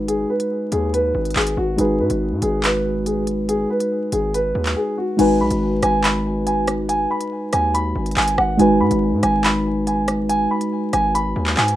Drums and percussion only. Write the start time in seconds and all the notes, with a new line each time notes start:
0.08 closed hi-hat
0.40 closed hi-hat
0.72 closed hi-hat
0.94 closed hi-hat
1.25 closed hi-hat
1.31 closed hi-hat
1.36 clap, closed hi-hat
1.41 closed hi-hat
1.47 closed hi-hat
1.78 closed hi-hat
2.10 closed hi-hat
2.42 closed hi-hat
2.64 clap, closed hi-hat
3.06 closed hi-hat
3.27 closed hi-hat
3.49 closed hi-hat
3.80 closed hi-hat
4.12 closed hi-hat
4.34 closed hi-hat
4.66 clap, closed hi-hat
5.19 closed hi-hat, crash
5.50 closed hi-hat
5.82 cross-stick, closed hi-hat
6.04 clap, closed hi-hat
6.47 closed hi-hat
6.67 cross-stick, closed hi-hat
6.89 closed hi-hat
7.21 closed hi-hat
7.53 cross-stick, closed hi-hat
7.75 closed hi-hat
8.06 closed hi-hat
8.11 closed hi-hat
8.17 clap, closed hi-hat
8.22 closed hi-hat
8.28 closed hi-hat
8.38 cross-stick
8.59 closed hi-hat
8.91 closed hi-hat
9.23 cross-stick, closed hi-hat
9.44 clap, closed hi-hat
9.87 closed hi-hat
10.08 cross-stick, closed hi-hat
10.30 closed hi-hat
10.61 closed hi-hat
10.93 cross-stick, closed hi-hat
11.15 closed hi-hat
11.47 clap, closed hi-hat
11.57 clap, closed hi-hat
11.68 closed hi-hat